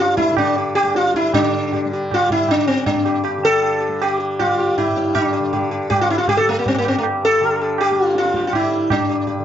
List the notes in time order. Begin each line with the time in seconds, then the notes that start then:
Already playing: G2 D3 G3
0.00 F4
0.17 E4, tabla ke
0.31 D3
0.37 D4, tabla na, tabla ge
0.58 G4
0.75 G4, tabla na
0.83 G3
0.95 F4, tabla te
1.15 E4, tabla ke
1.34 D3 D4 G4, tabla na, tabla ge
1.72 G4, tabla tin, tabla ge
1.85 G3
1.93 G4
2.11 F4, tabla na, tabla ge
2.30 E4, tabla ge
2.36 G3
2.48 D4, tabla na, tabla ge
2.67 C4
2.86 G2 D4, tabla tin, tabla ge
3.05 G4, tabla na
3.24 G4, tabla na
3.38 D3
3.44 A4, tabla na
3.61 G4, tabla tin
3.80 G4
3.89 G3
4.02 G4, tabla na
4.20 G4
4.39 G3 F4, tabla na, tabla ge
4.59 G4
4.78 E4, tabla na, tabla ge
4.89 G2
4.96 G4, tabla te
5.15 D4, tabla na, tabla ge
5.33 G4
5.39 D3
5.53 G4, tabla tin, tabla ge
5.71 G4
5.90 G3 G4, tabla na, tabla ge
6.01 F4
6.09 E4, tabla te
6.18 F4
6.28 G4, tabla na, tabla ge
6.37 G3 A4
6.49 A3
6.59 A#3
6.66 C4, tabla tin, tabla ge
6.74 C4
6.78 A#3
6.85 C4, tabla na
6.90 G2
6.98 A3
7.03 tabla na
7.25 A4
7.40 D3 G4, tabla tin
7.61 G4
7.78 G4, tabla na
7.91 G3
8.06 F4
8.15 F4, tabla te
8.25 tabla te
8.34 G4, tabla ke
8.40 G3, tabla te
8.47 F4
8.53 E4, tabla na, tabla ge
8.72 tabla te
8.90 G2 D4, tabla na, tabla ge
9.09 G4
9.27 G4, tabla tin, tabla ge
9.39 D3